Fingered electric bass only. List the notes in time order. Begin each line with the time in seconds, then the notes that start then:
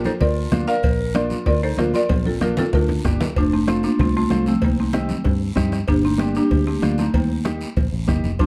0.21 D2
0.53 D2
0.84 A#1
1.47 D2
1.78 D2
2.10 A#1
2.74 D2
3.05 G1
3.36 F1
3.99 C2
4.31 C2
4.63 C2
5.25 G2
5.57 G2
5.88 G1
6.51 D2
6.82 D2
7.14 D#2
7.77 A#1
7.92 A1
8.09 G1
8.24 F1
8.40 F2